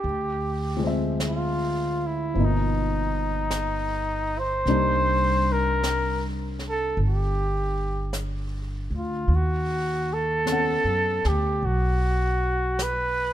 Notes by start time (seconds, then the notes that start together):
Already playing: G4
0.04 D2, brush sweep
0.76 F3 G#3
0.83 C4 E5
1.20 brush sweep, snare, hi-hat pedal
1.29 F4
2.06 E4
2.34 G1 B2 F3 A#3, brush sweep
2.39 D#4
2.45 D#4
3.51 brush sweep, snare, hi-hat pedal
4.38 C5
4.66 C2 G3 A#3 D4 D#4, brush sweep, snare
5.52 A#4
5.83 brush sweep, snare, hi-hat pedal
6.59 snare
6.69 A4
6.97 G1, brush sweep
7.08 G4
8.13 brush sweep, snare, hi-hat pedal
8.91 D2
8.97 F4
9.28 D#2, brush sweep
9.35 F#4
10.13 A4
10.46 B3, brush sweep, snare, hi-hat pedal
10.50 C#4 F#5
10.84 F#2
11.25 D2 G4, snare
11.62 B1 F#4, brush sweep
12.79 B4, brush sweep, snare, hi-hat pedal